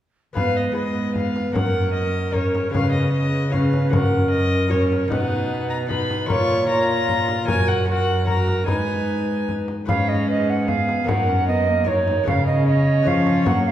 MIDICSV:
0, 0, Header, 1, 7, 480
1, 0, Start_track
1, 0, Tempo, 395778
1, 435, Time_signature, 3, 2, 24, 8
1, 9551, Tempo, 398936
1, 16578, End_track
2, 0, Start_track
2, 0, Title_t, "Violin"
2, 0, Program_c, 0, 40
2, 437, Note_on_c, 0, 77, 82
2, 686, Note_on_c, 0, 75, 65
2, 704, Note_off_c, 0, 77, 0
2, 916, Note_off_c, 0, 75, 0
2, 923, Note_on_c, 0, 75, 64
2, 1393, Note_off_c, 0, 75, 0
2, 1405, Note_on_c, 0, 77, 70
2, 1872, Note_off_c, 0, 77, 0
2, 1879, Note_on_c, 0, 78, 73
2, 2346, Note_off_c, 0, 78, 0
2, 2354, Note_on_c, 0, 75, 73
2, 2840, Note_on_c, 0, 73, 63
2, 2858, Note_off_c, 0, 75, 0
2, 3309, Note_off_c, 0, 73, 0
2, 3317, Note_on_c, 0, 77, 80
2, 3533, Note_off_c, 0, 77, 0
2, 3540, Note_on_c, 0, 75, 65
2, 3779, Note_off_c, 0, 75, 0
2, 3787, Note_on_c, 0, 75, 78
2, 4267, Note_on_c, 0, 77, 65
2, 4286, Note_off_c, 0, 75, 0
2, 4740, Note_off_c, 0, 77, 0
2, 4747, Note_on_c, 0, 78, 73
2, 5213, Note_off_c, 0, 78, 0
2, 5220, Note_on_c, 0, 75, 80
2, 5707, Note_on_c, 0, 73, 67
2, 5725, Note_off_c, 0, 75, 0
2, 6184, Note_off_c, 0, 73, 0
2, 6191, Note_on_c, 0, 78, 81
2, 6898, Note_off_c, 0, 78, 0
2, 6909, Note_on_c, 0, 82, 78
2, 7006, Note_off_c, 0, 82, 0
2, 7155, Note_on_c, 0, 83, 68
2, 7617, Note_off_c, 0, 83, 0
2, 7625, Note_on_c, 0, 85, 92
2, 8099, Note_off_c, 0, 85, 0
2, 8113, Note_on_c, 0, 82, 91
2, 9053, Note_off_c, 0, 82, 0
2, 9068, Note_on_c, 0, 80, 97
2, 9310, Note_on_c, 0, 78, 77
2, 9328, Note_off_c, 0, 80, 0
2, 9545, Note_off_c, 0, 78, 0
2, 9552, Note_on_c, 0, 78, 84
2, 10023, Note_off_c, 0, 78, 0
2, 10028, Note_on_c, 0, 82, 72
2, 10498, Note_off_c, 0, 82, 0
2, 10505, Note_on_c, 0, 80, 76
2, 11463, Note_off_c, 0, 80, 0
2, 11966, Note_on_c, 0, 73, 63
2, 12443, Note_on_c, 0, 71, 60
2, 12461, Note_off_c, 0, 73, 0
2, 12924, Note_on_c, 0, 68, 60
2, 12942, Note_off_c, 0, 71, 0
2, 13402, Note_on_c, 0, 70, 66
2, 13420, Note_off_c, 0, 68, 0
2, 14353, Note_off_c, 0, 70, 0
2, 14360, Note_on_c, 0, 70, 59
2, 15312, Note_on_c, 0, 73, 64
2, 15330, Note_off_c, 0, 70, 0
2, 16578, Note_off_c, 0, 73, 0
2, 16578, End_track
3, 0, Start_track
3, 0, Title_t, "Recorder"
3, 0, Program_c, 1, 74
3, 434, Note_on_c, 1, 71, 52
3, 884, Note_off_c, 1, 71, 0
3, 917, Note_on_c, 1, 71, 51
3, 1887, Note_on_c, 1, 70, 53
3, 1905, Note_off_c, 1, 71, 0
3, 2849, Note_off_c, 1, 70, 0
3, 2855, Note_on_c, 1, 70, 58
3, 3332, Note_on_c, 1, 71, 58
3, 3350, Note_off_c, 1, 70, 0
3, 4282, Note_off_c, 1, 71, 0
3, 4289, Note_on_c, 1, 71, 59
3, 4761, Note_on_c, 1, 70, 59
3, 4780, Note_off_c, 1, 71, 0
3, 5709, Note_off_c, 1, 70, 0
3, 5716, Note_on_c, 1, 70, 56
3, 6187, Note_off_c, 1, 70, 0
3, 6200, Note_on_c, 1, 71, 59
3, 7137, Note_off_c, 1, 71, 0
3, 7158, Note_on_c, 1, 71, 63
3, 7626, Note_off_c, 1, 71, 0
3, 7634, Note_on_c, 1, 73, 64
3, 8104, Note_off_c, 1, 73, 0
3, 8124, Note_on_c, 1, 73, 69
3, 8729, Note_off_c, 1, 73, 0
3, 9078, Note_on_c, 1, 70, 57
3, 9522, Note_off_c, 1, 70, 0
3, 9554, Note_on_c, 1, 70, 59
3, 10024, Note_off_c, 1, 70, 0
3, 10041, Note_on_c, 1, 70, 58
3, 10535, Note_on_c, 1, 71, 57
3, 10553, Note_off_c, 1, 70, 0
3, 11740, Note_off_c, 1, 71, 0
3, 11969, Note_on_c, 1, 77, 103
3, 12211, Note_on_c, 1, 75, 84
3, 12229, Note_off_c, 1, 77, 0
3, 12452, Note_off_c, 1, 75, 0
3, 12461, Note_on_c, 1, 75, 92
3, 12707, Note_on_c, 1, 78, 81
3, 12725, Note_off_c, 1, 75, 0
3, 12931, Note_on_c, 1, 77, 91
3, 12949, Note_off_c, 1, 78, 0
3, 13410, Note_on_c, 1, 78, 92
3, 13428, Note_off_c, 1, 77, 0
3, 13876, Note_off_c, 1, 78, 0
3, 13883, Note_on_c, 1, 75, 101
3, 14366, Note_on_c, 1, 73, 79
3, 14384, Note_off_c, 1, 75, 0
3, 14836, Note_off_c, 1, 73, 0
3, 14843, Note_on_c, 1, 77, 98
3, 15068, Note_off_c, 1, 77, 0
3, 15075, Note_on_c, 1, 75, 86
3, 15313, Note_off_c, 1, 75, 0
3, 15320, Note_on_c, 1, 75, 105
3, 15807, Note_on_c, 1, 77, 89
3, 15825, Note_off_c, 1, 75, 0
3, 16263, Note_off_c, 1, 77, 0
3, 16270, Note_on_c, 1, 78, 100
3, 16505, Note_off_c, 1, 78, 0
3, 16514, Note_on_c, 1, 77, 89
3, 16578, Note_off_c, 1, 77, 0
3, 16578, End_track
4, 0, Start_track
4, 0, Title_t, "Lute"
4, 0, Program_c, 2, 24
4, 400, Note_on_c, 2, 59, 39
4, 411, Note_on_c, 2, 68, 40
4, 427, Note_on_c, 2, 71, 38
4, 442, Note_on_c, 2, 44, 41
4, 858, Note_off_c, 2, 59, 0
4, 871, Note_off_c, 2, 68, 0
4, 872, Note_on_c, 2, 59, 43
4, 886, Note_on_c, 2, 68, 40
4, 891, Note_off_c, 2, 71, 0
4, 906, Note_on_c, 2, 71, 39
4, 1830, Note_off_c, 2, 59, 0
4, 1837, Note_off_c, 2, 68, 0
4, 1838, Note_off_c, 2, 44, 0
4, 1840, Note_on_c, 2, 58, 39
4, 1847, Note_off_c, 2, 71, 0
4, 1857, Note_on_c, 2, 70, 36
4, 1869, Note_on_c, 2, 73, 37
4, 1883, Note_on_c, 2, 42, 40
4, 2786, Note_off_c, 2, 58, 0
4, 2801, Note_on_c, 2, 58, 39
4, 2804, Note_off_c, 2, 70, 0
4, 2811, Note_off_c, 2, 73, 0
4, 2819, Note_on_c, 2, 70, 43
4, 2833, Note_on_c, 2, 73, 39
4, 3267, Note_off_c, 2, 58, 0
4, 3272, Note_on_c, 2, 59, 43
4, 3278, Note_off_c, 2, 42, 0
4, 3281, Note_off_c, 2, 70, 0
4, 3286, Note_on_c, 2, 68, 36
4, 3289, Note_off_c, 2, 73, 0
4, 3304, Note_on_c, 2, 73, 37
4, 3320, Note_on_c, 2, 49, 43
4, 4223, Note_off_c, 2, 59, 0
4, 4235, Note_off_c, 2, 68, 0
4, 4237, Note_on_c, 2, 59, 39
4, 4244, Note_off_c, 2, 73, 0
4, 4248, Note_on_c, 2, 68, 42
4, 4263, Note_on_c, 2, 73, 39
4, 4712, Note_off_c, 2, 49, 0
4, 4716, Note_off_c, 2, 59, 0
4, 4721, Note_on_c, 2, 58, 45
4, 4730, Note_off_c, 2, 68, 0
4, 4734, Note_off_c, 2, 73, 0
4, 4735, Note_on_c, 2, 66, 40
4, 4749, Note_on_c, 2, 73, 39
4, 4765, Note_on_c, 2, 42, 45
4, 5660, Note_off_c, 2, 58, 0
4, 5675, Note_on_c, 2, 58, 45
4, 5676, Note_off_c, 2, 66, 0
4, 5683, Note_off_c, 2, 73, 0
4, 5692, Note_on_c, 2, 66, 44
4, 5708, Note_on_c, 2, 73, 45
4, 6151, Note_off_c, 2, 42, 0
4, 6153, Note_off_c, 2, 58, 0
4, 6158, Note_on_c, 2, 59, 45
4, 6170, Note_off_c, 2, 66, 0
4, 6174, Note_on_c, 2, 63, 41
4, 6178, Note_off_c, 2, 73, 0
4, 6193, Note_on_c, 2, 75, 46
4, 6207, Note_on_c, 2, 47, 48
4, 7100, Note_off_c, 2, 59, 0
4, 7114, Note_on_c, 2, 59, 47
4, 7115, Note_off_c, 2, 63, 0
4, 7124, Note_off_c, 2, 75, 0
4, 7132, Note_on_c, 2, 63, 43
4, 7148, Note_on_c, 2, 75, 44
4, 7585, Note_off_c, 2, 63, 0
4, 7590, Note_off_c, 2, 47, 0
4, 7590, Note_on_c, 2, 61, 40
4, 7598, Note_off_c, 2, 59, 0
4, 7606, Note_on_c, 2, 65, 45
4, 7615, Note_off_c, 2, 75, 0
4, 7620, Note_on_c, 2, 70, 44
4, 7637, Note_on_c, 2, 46, 51
4, 8049, Note_off_c, 2, 61, 0
4, 8064, Note_on_c, 2, 61, 47
4, 8066, Note_off_c, 2, 65, 0
4, 8081, Note_on_c, 2, 65, 43
4, 8082, Note_off_c, 2, 70, 0
4, 8097, Note_on_c, 2, 70, 48
4, 9010, Note_off_c, 2, 61, 0
4, 9025, Note_off_c, 2, 46, 0
4, 9025, Note_on_c, 2, 61, 44
4, 9026, Note_off_c, 2, 65, 0
4, 9035, Note_off_c, 2, 70, 0
4, 9040, Note_on_c, 2, 66, 44
4, 9057, Note_on_c, 2, 70, 43
4, 9071, Note_on_c, 2, 42, 50
4, 9494, Note_off_c, 2, 61, 0
4, 9509, Note_on_c, 2, 61, 45
4, 9512, Note_off_c, 2, 66, 0
4, 9522, Note_off_c, 2, 70, 0
4, 9527, Note_on_c, 2, 66, 44
4, 9537, Note_on_c, 2, 70, 47
4, 9982, Note_off_c, 2, 61, 0
4, 9995, Note_off_c, 2, 66, 0
4, 9996, Note_on_c, 2, 61, 48
4, 10009, Note_on_c, 2, 66, 42
4, 10010, Note_off_c, 2, 70, 0
4, 10024, Note_on_c, 2, 70, 44
4, 10468, Note_off_c, 2, 61, 0
4, 10469, Note_off_c, 2, 42, 0
4, 10473, Note_on_c, 2, 59, 37
4, 10486, Note_off_c, 2, 66, 0
4, 10491, Note_on_c, 2, 63, 39
4, 10499, Note_off_c, 2, 70, 0
4, 10507, Note_on_c, 2, 71, 36
4, 10522, Note_on_c, 2, 44, 48
4, 11685, Note_off_c, 2, 44, 0
4, 11906, Note_off_c, 2, 59, 0
4, 11915, Note_off_c, 2, 63, 0
4, 11923, Note_off_c, 2, 71, 0
4, 11933, Note_on_c, 2, 59, 47
4, 11945, Note_on_c, 2, 68, 51
4, 11961, Note_on_c, 2, 71, 50
4, 11976, Note_on_c, 2, 44, 54
4, 13347, Note_off_c, 2, 59, 0
4, 13354, Note_off_c, 2, 68, 0
4, 13361, Note_on_c, 2, 58, 46
4, 13362, Note_off_c, 2, 71, 0
4, 13364, Note_off_c, 2, 44, 0
4, 13377, Note_on_c, 2, 70, 44
4, 13391, Note_on_c, 2, 73, 43
4, 13410, Note_on_c, 2, 42, 50
4, 14303, Note_off_c, 2, 58, 0
4, 14315, Note_off_c, 2, 70, 0
4, 14317, Note_on_c, 2, 58, 45
4, 14326, Note_off_c, 2, 73, 0
4, 14330, Note_on_c, 2, 70, 54
4, 14346, Note_on_c, 2, 73, 49
4, 14792, Note_off_c, 2, 58, 0
4, 14794, Note_off_c, 2, 42, 0
4, 14797, Note_on_c, 2, 59, 49
4, 14807, Note_off_c, 2, 70, 0
4, 14812, Note_on_c, 2, 68, 43
4, 14813, Note_off_c, 2, 73, 0
4, 14828, Note_on_c, 2, 73, 52
4, 14843, Note_on_c, 2, 49, 53
4, 15733, Note_off_c, 2, 59, 0
4, 15747, Note_on_c, 2, 59, 53
4, 15748, Note_off_c, 2, 68, 0
4, 15750, Note_off_c, 2, 49, 0
4, 15762, Note_off_c, 2, 73, 0
4, 15762, Note_on_c, 2, 68, 49
4, 15776, Note_on_c, 2, 73, 52
4, 15791, Note_on_c, 2, 53, 58
4, 16218, Note_off_c, 2, 53, 0
4, 16223, Note_on_c, 2, 58, 51
4, 16232, Note_off_c, 2, 68, 0
4, 16234, Note_off_c, 2, 59, 0
4, 16236, Note_on_c, 2, 66, 49
4, 16237, Note_off_c, 2, 73, 0
4, 16251, Note_on_c, 2, 73, 48
4, 16269, Note_on_c, 2, 54, 50
4, 16578, Note_off_c, 2, 54, 0
4, 16578, Note_off_c, 2, 58, 0
4, 16578, Note_off_c, 2, 66, 0
4, 16578, Note_off_c, 2, 73, 0
4, 16578, End_track
5, 0, Start_track
5, 0, Title_t, "Viola"
5, 0, Program_c, 3, 41
5, 435, Note_on_c, 3, 59, 52
5, 884, Note_off_c, 3, 59, 0
5, 914, Note_on_c, 3, 59, 52
5, 1887, Note_on_c, 3, 61, 49
5, 1905, Note_off_c, 3, 59, 0
5, 2835, Note_off_c, 3, 61, 0
5, 2843, Note_on_c, 3, 61, 53
5, 3315, Note_off_c, 3, 61, 0
5, 3322, Note_on_c, 3, 61, 52
5, 4263, Note_off_c, 3, 61, 0
5, 4279, Note_on_c, 3, 61, 50
5, 4752, Note_off_c, 3, 61, 0
5, 4768, Note_on_c, 3, 61, 56
5, 5703, Note_off_c, 3, 61, 0
5, 5734, Note_on_c, 3, 61, 59
5, 6191, Note_off_c, 3, 61, 0
5, 6198, Note_on_c, 3, 63, 64
5, 7136, Note_off_c, 3, 63, 0
5, 7159, Note_on_c, 3, 63, 56
5, 7626, Note_off_c, 3, 63, 0
5, 7644, Note_on_c, 3, 65, 61
5, 8109, Note_off_c, 3, 65, 0
5, 8126, Note_on_c, 3, 65, 61
5, 9084, Note_on_c, 3, 66, 60
5, 9103, Note_off_c, 3, 65, 0
5, 9556, Note_off_c, 3, 66, 0
5, 9563, Note_on_c, 3, 66, 59
5, 10028, Note_off_c, 3, 66, 0
5, 10034, Note_on_c, 3, 66, 59
5, 10509, Note_off_c, 3, 66, 0
5, 10516, Note_on_c, 3, 63, 58
5, 11706, Note_off_c, 3, 63, 0
5, 11962, Note_on_c, 3, 61, 62
5, 12932, Note_on_c, 3, 59, 58
5, 12950, Note_off_c, 3, 61, 0
5, 13418, Note_on_c, 3, 63, 64
5, 13436, Note_off_c, 3, 59, 0
5, 13652, Note_on_c, 3, 61, 60
5, 13670, Note_off_c, 3, 63, 0
5, 13890, Note_on_c, 3, 59, 64
5, 13908, Note_off_c, 3, 61, 0
5, 14133, Note_on_c, 3, 58, 60
5, 14151, Note_off_c, 3, 59, 0
5, 14368, Note_off_c, 3, 58, 0
5, 14374, Note_on_c, 3, 63, 62
5, 14848, Note_on_c, 3, 61, 57
5, 14866, Note_off_c, 3, 63, 0
5, 15787, Note_off_c, 3, 61, 0
5, 15794, Note_on_c, 3, 61, 66
5, 16274, Note_on_c, 3, 58, 62
5, 16292, Note_off_c, 3, 61, 0
5, 16578, Note_off_c, 3, 58, 0
5, 16578, End_track
6, 0, Start_track
6, 0, Title_t, "Cello"
6, 0, Program_c, 4, 42
6, 443, Note_on_c, 4, 44, 54
6, 1838, Note_off_c, 4, 44, 0
6, 1884, Note_on_c, 4, 42, 54
6, 3299, Note_off_c, 4, 42, 0
6, 3328, Note_on_c, 4, 49, 52
6, 4765, Note_on_c, 4, 42, 57
6, 4783, Note_off_c, 4, 49, 0
6, 6193, Note_off_c, 4, 42, 0
6, 6200, Note_on_c, 4, 47, 63
6, 7634, Note_on_c, 4, 46, 63
6, 7652, Note_off_c, 4, 47, 0
6, 9069, Note_on_c, 4, 42, 62
6, 9087, Note_off_c, 4, 46, 0
6, 10513, Note_on_c, 4, 44, 56
6, 10532, Note_off_c, 4, 42, 0
6, 11729, Note_off_c, 4, 44, 0
6, 11970, Note_on_c, 4, 44, 69
6, 13362, Note_off_c, 4, 44, 0
6, 13404, Note_on_c, 4, 42, 62
6, 14810, Note_off_c, 4, 42, 0
6, 14841, Note_on_c, 4, 49, 69
6, 15778, Note_off_c, 4, 49, 0
6, 15801, Note_on_c, 4, 53, 70
6, 16277, Note_on_c, 4, 54, 65
6, 16295, Note_off_c, 4, 53, 0
6, 16578, Note_off_c, 4, 54, 0
6, 16578, End_track
7, 0, Start_track
7, 0, Title_t, "Frame drum"
7, 443, Note_on_c, 9, 64, 70
7, 565, Note_off_c, 9, 64, 0
7, 1401, Note_on_c, 9, 64, 47
7, 1522, Note_off_c, 9, 64, 0
7, 1648, Note_on_c, 9, 64, 50
7, 1769, Note_off_c, 9, 64, 0
7, 1887, Note_on_c, 9, 64, 74
7, 2008, Note_off_c, 9, 64, 0
7, 2855, Note_on_c, 9, 64, 49
7, 2976, Note_off_c, 9, 64, 0
7, 3092, Note_on_c, 9, 64, 51
7, 3213, Note_off_c, 9, 64, 0
7, 3330, Note_on_c, 9, 64, 70
7, 3451, Note_off_c, 9, 64, 0
7, 4287, Note_on_c, 9, 64, 50
7, 4409, Note_off_c, 9, 64, 0
7, 4527, Note_on_c, 9, 64, 50
7, 4648, Note_off_c, 9, 64, 0
7, 4767, Note_on_c, 9, 64, 78
7, 4888, Note_off_c, 9, 64, 0
7, 5726, Note_on_c, 9, 64, 50
7, 5847, Note_off_c, 9, 64, 0
7, 5970, Note_on_c, 9, 64, 51
7, 6091, Note_off_c, 9, 64, 0
7, 6205, Note_on_c, 9, 64, 77
7, 6326, Note_off_c, 9, 64, 0
7, 7163, Note_on_c, 9, 64, 53
7, 7284, Note_off_c, 9, 64, 0
7, 7403, Note_on_c, 9, 64, 51
7, 7524, Note_off_c, 9, 64, 0
7, 7641, Note_on_c, 9, 64, 72
7, 7762, Note_off_c, 9, 64, 0
7, 8596, Note_on_c, 9, 64, 48
7, 8717, Note_off_c, 9, 64, 0
7, 8836, Note_on_c, 9, 64, 52
7, 8957, Note_off_c, 9, 64, 0
7, 9076, Note_on_c, 9, 64, 75
7, 9198, Note_off_c, 9, 64, 0
7, 10038, Note_on_c, 9, 64, 50
7, 10158, Note_off_c, 9, 64, 0
7, 10276, Note_on_c, 9, 64, 48
7, 10397, Note_off_c, 9, 64, 0
7, 10519, Note_on_c, 9, 64, 65
7, 10639, Note_off_c, 9, 64, 0
7, 11488, Note_on_c, 9, 64, 49
7, 11608, Note_off_c, 9, 64, 0
7, 11726, Note_on_c, 9, 64, 49
7, 11846, Note_off_c, 9, 64, 0
7, 11971, Note_on_c, 9, 64, 76
7, 12092, Note_off_c, 9, 64, 0
7, 12929, Note_on_c, 9, 64, 56
7, 13049, Note_off_c, 9, 64, 0
7, 13175, Note_on_c, 9, 64, 52
7, 13296, Note_off_c, 9, 64, 0
7, 13412, Note_on_c, 9, 64, 83
7, 13532, Note_off_c, 9, 64, 0
7, 14366, Note_on_c, 9, 64, 53
7, 14486, Note_off_c, 9, 64, 0
7, 14606, Note_on_c, 9, 64, 56
7, 14726, Note_off_c, 9, 64, 0
7, 14845, Note_on_c, 9, 64, 77
7, 14966, Note_off_c, 9, 64, 0
7, 15797, Note_on_c, 9, 64, 53
7, 15918, Note_off_c, 9, 64, 0
7, 16039, Note_on_c, 9, 64, 53
7, 16159, Note_off_c, 9, 64, 0
7, 16275, Note_on_c, 9, 64, 83
7, 16395, Note_off_c, 9, 64, 0
7, 16578, End_track
0, 0, End_of_file